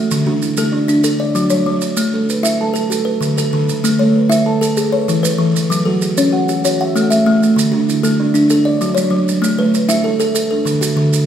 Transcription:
0.00 0.11 A3 medium
0.00 0.27 A3 medium
0.00 0.10 E5 medium
0.00 0.26 E5 medium
0.11 0.42 D3 medium
0.11 maracas medium
0.26 0.57 D3 medium
0.26 0.71 D4 medium
0.26 0.73 F#4 medium
0.42 0.89 E4 medium
0.42 maracas medium
0.57 0.89 A3 medium
0.57 1.03 A4 medium
0.57 maracas medium
0.72 1.03 D4 medium
0.72 1.19 D5 medium
0.88 1.04 D4 medium
0.88 maracas medium
1.04 1.20 D4 medium
1.04 1.51 A4 medium
1.04 maracas medium
1.20 1.66 C#5 medium
1.20 1.66 D5 medium
1.35 1.65 F#3 medium
1.35 1.81 F#4 medium
1.35 maracas medium
1.50 1.81 F#3 medium
1.50 1.97 C#5 medium
1.50 maracas medium
1.66 1.97 F#3 medium
1.66 2.13 C#5 medium
1.81 2.13 F#3 medium
1.81 maracas medium
1.97 2.28 A3 medium
1.97 maracas medium
2.14 2.45 A3 medium
2.14 2.60 A4 medium
2.29 2.76 B4 medium
2.29 maracas medium
2.43 2.75 E4 medium
2.43 2.90 E5 medium
2.43 maracas medium
2.61 2.90 A4 medium
2.61 3.07 A5 medium
2.74 2.90 A4 medium
2.74 maracas medium
2.90 3.37 F#4 medium
2.90 3.07 A4 medium
2.90 maracas medium
3.05 3.52 B4 medium
3.21 3.52 D3 medium
3.21 maracas medium
3.38 3.69 D3 medium
3.38 3.84 A4 medium
3.38 maracas medium
3.53 3.84 D3 medium
3.53 3.99 A4 medium
3.69 4.01 D3 medium
3.69 maracas medium
3.84 4.15 A3 medium
3.84 maracas medium
3.99 4.31 A3 medium
3.99 4.45 A4 medium
3.99 4.46 C#5 medium
4.16 4.62 B4 medium
4.29 4.61 E4 medium
4.29 4.77 E5 medium
4.29 maracas medium
4.46 4.77 A4 medium
4.46 4.93 A5 medium
4.61 4.77 A4 medium
4.61 maracas medium
4.77 5.24 G#4 medium
4.77 4.93 A4 medium
4.77 maracas medium
4.92 5.38 B4 medium
4.92 5.39 C#5 medium
5.08 5.37 E3 medium
5.08 5.55 E4 medium
5.08 maracas medium
5.23 5.54 E3 medium
5.23 5.70 B4 medium
5.23 maracas medium
5.38 5.70 E3 medium
5.38 5.86 B4 medium
5.55 5.86 E3 medium
5.55 maracas medium
5.70 6.01 F#3 medium
5.70 maracas medium
5.85 6.17 F#3 medium
5.85 6.31 F#4 medium
5.85 6.32 A4 medium
6.01 6.48 G#4 medium
6.01 maracas medium
6.17 6.48 C#4 medium
6.17 6.64 C#5 medium
6.17 maracas medium
6.33 6.63 F#4 medium
6.33 6.79 F#5 medium
6.49 6.64 F#4 medium
6.49 maracas medium
6.65 6.80 F#4 medium
6.65 7.11 C#5 medium
6.65 maracas medium
6.81 7.26 E5 medium
6.81 7.27 F#5 medium
6.95 7.25 A3 medium
6.95 7.42 A4 medium
6.95 maracas medium
7.10 7.41 A3 medium
7.10 7.57 E5 medium
7.10 maracas medium
7.26 7.57 A3 medium
7.26 7.73 E5 medium
7.42 7.73 A3 medium
7.42 maracas soft
7.56 7.88 D3 medium
7.56 maracas medium
7.72 8.04 D3 medium
7.72 8.18 D4 medium
7.72 8.19 F#4 medium
7.88 8.35 E4 medium
7.88 maracas medium
8.03 8.34 A3 medium
8.03 8.49 A4 medium
8.03 maracas medium
8.20 8.50 D4 medium
8.20 8.66 D5 medium
8.34 8.50 D4 medium
8.34 maracas medium
8.50 8.66 D4 medium
8.50 8.97 A4 medium
8.50 maracas medium
8.65 9.11 C#5 medium
8.65 9.12 D5 medium
8.81 9.09 F#3 medium
8.81 9.28 F#4 medium
8.81 maracas medium
8.95 9.28 F#3 medium
8.95 9.42 C#5 medium
8.95 maracas medium
9.10 9.42 F#3 medium
9.10 9.59 C#5 medium
9.28 9.59 F#3 medium
9.28 maracas medium
9.42 9.73 A3 medium
9.42 maracas medium
9.59 9.90 A3 medium
9.59 10.05 B4 medium
9.59 10.06 C#5 medium
9.74 10.20 B4 medium
9.74 maracas medium
9.89 10.20 E4 medium
9.89 10.35 E5 medium
9.89 maracas medium
10.04 10.18 A4 medium
10.04 10.35 A4 medium
10.04 10.20 E5 medium
10.20 10.34 A4 medium
10.20 10.67 E5 medium
10.20 maracas medium
10.35 10.49 A4 medium
10.35 10.51 A4 medium
10.35 maracas medium
10.51 10.98 D4 medium
10.51 10.97 A4 medium
10.65 10.96 D3 medium
10.65 10.97 A4 medium
10.65 maracas medium
10.81 11.12 D3 medium
10.81 11.26 F#4 medium
10.81 maracas medium
10.97 11.26 D3 medium
10.97 11.26 A4 medium
11.13 11.26 D3 medium
11.13 maracas medium

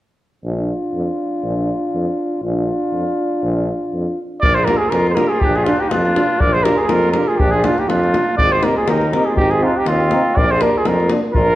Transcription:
0.44 0.72 A#1 medium
0.44 2.40 D4 soft
0.44 2.40 F4 soft
0.94 1.08 F2 medium
1.44 1.71 A#1 medium
1.94 2.08 F2 medium
2.43 2.70 A#1 medium
2.43 4.20 D4 medium
2.43 4.19 F4 medium
2.92 3.06 F2 medium
3.43 3.71 A#1 medium
3.94 4.07 F2 medium
4.41 4.70 A#1 medium
4.41 4.60 A#4 medium
4.41 4.56 D5 loud
4.41 davul low medium
4.55 4.69 G#4 medium
4.55 4.66 C5 medium
4.55 davul high soft
4.64 4.78 D4 medium
4.64 4.78 F4 medium
4.64 4.85 G4 medium
4.64 4.79 A#4 medium
4.64 davul high medium
4.77 4.91 G#4 medium
4.84 4.94 F4 medium
4.90 5.20 F2 medium
4.90 5.09 A#4 medium
4.90 davul high medium
4.94 5.14 F4 medium
5.07 5.17 C5 medium
5.07 davul high soft
5.14 5.20 G#4 medium
5.14 5.30 A#4 medium
5.14 davul high medium
5.18 5.28 D4 medium
5.18 5.28 F4 medium
5.18 5.34 G4 medium
5.29 5.46 F4 medium
5.29 5.42 G#4 medium
5.40 5.70 A#1 medium
5.40 5.59 D4 medium
5.40 5.57 G4 medium
5.40 davul low medium
5.56 5.71 F4 medium
5.56 5.66 G#4 medium
5.56 davul high soft
5.65 5.77 D4 medium
5.65 5.81 F4 medium
5.65 5.77 F4 medium
5.65 davul high medium
5.70 5.84 D4 medium
5.80 5.95 D#4 medium
5.80 5.91 G4 medium
5.90 6.19 F2 medium
5.90 6.42 D4 medium
5.90 6.42 F4 medium
5.90 davul high medium
6.06 davul high soft
6.17 6.26 D4 medium
6.17 6.28 F4 medium
6.17 davul high medium
6.40 6.69 A#1 medium
6.40 6.56 A#4 medium
6.40 6.55 D5 medium
6.40 davul low medium
6.53 6.66 G#4 medium
6.53 6.65 C5 medium
6.53 davul high soft
6.63 6.76 F4 medium
6.63 6.80 G4 medium
6.63 6.78 A#4 medium
6.63 davul high medium
6.69 6.78 D4 medium
6.77 6.82 F4 medium
6.77 6.84 G4 soft
6.77 6.81 G#4 medium
6.77 6.84 A#4 medium
6.82 6.88 F4 medium
6.82 6.89 G#4 medium
6.88 7.18 F2 medium
6.88 7.13 F4 medium
6.88 7.11 A#4 medium
6.88 davul high medium
7.04 davul high soft
7.12 7.25 D4 medium
7.12 7.31 G4 medium
7.12 7.29 A#4 medium
7.12 davul high medium
7.16 7.26 F4 medium
7.28 7.42 F4 medium
7.28 7.39 G#4 medium
7.37 7.67 A#1 loud
7.37 7.56 D4 medium
7.37 7.52 G4 medium
7.37 davul low medium
7.51 7.68 F4 medium
7.51 7.66 G#4 medium
7.51 davul high soft
7.64 7.74 D4 medium
7.64 7.81 D4 medium
7.64 7.80 F4 medium
7.64 7.76 F4 medium
7.64 davul high medium
7.78 7.92 D#4 medium
7.78 7.90 G4 medium
7.78 davul high soft
7.87 8.14 F2 medium
7.87 8.38 D4 medium
7.87 8.37 F4 medium
7.87 davul high medium
8.03 davul high soft
8.14 8.24 D4 soft
8.14 8.24 F4 soft
8.14 davul high medium
8.38 8.65 G#1 medium
8.38 8.54 D5 loud
8.38 davul low medium
8.42 8.57 G#4 medium
8.52 8.66 C5 medium
8.52 davul high soft
8.57 8.68 G#4 medium
8.63 8.74 C4 soft
8.63 8.74 D#4 medium
8.63 8.78 G4 medium
8.63 8.77 A#4 medium
8.63 davul high medium
8.78 8.91 F4 medium
8.78 8.90 G#4 medium
8.87 9.14 D#2 medium
8.87 9.13 D#4 medium
8.87 9.11 A#4 medium
8.87 davul high medium
9.02 davul high soft
9.12 9.23 C4 medium
9.12 9.23 D#4 medium
9.12 9.27 A#4 medium
9.12 davul high medium
9.16 9.32 G4 medium
9.25 9.36 G#4 medium
9.30 9.39 F4 medium
9.36 9.63 G#1 loud
9.36 9.52 G4 medium
9.36 davul low medium
9.40 9.55 D#4 medium
9.51 9.68 F4 medium
9.51 9.65 G#4 medium
9.51 davul high soft
9.61 9.71 C4 medium
9.61 9.72 D#4 medium
9.61 9.79 F4 medium
9.66 9.81 D4 medium
9.77 9.88 D#4 medium
9.77 9.87 G4 medium
9.86 10.13 D#2 medium
9.86 10.38 F4 medium
9.86 davul high medium
9.91 10.40 C4 medium
10.00 davul high soft
10.11 10.21 C4 medium
10.11 10.21 D#4 medium
10.11 davul high medium
10.36 10.63 A#1 medium
10.36 10.53 A#4 medium
10.36 10.52 D5 medium
10.36 davul low medium
10.50 10.65 G#4 medium
10.50 10.63 C5 medium
10.50 davul high soft
10.60 10.69 A#3 medium
10.60 10.70 D4 medium
10.60 10.79 G4 medium
10.60 10.79 A#4 medium
10.60 davul high medium
10.78 10.88 F4 medium
10.78 10.89 G#4 medium
10.85 11.13 F2 medium
10.85 11.11 F4 medium
10.85 11.10 A#4 medium
10.85 davul high medium
11.00 davul high soft
11.10 11.20 A#3 medium
11.10 11.20 D4 medium
11.10 davul high medium
11.34 11.55 A#1 medium
11.34 11.55 F4 medium
11.34 11.55 A#4 loud
11.34 davul low medium

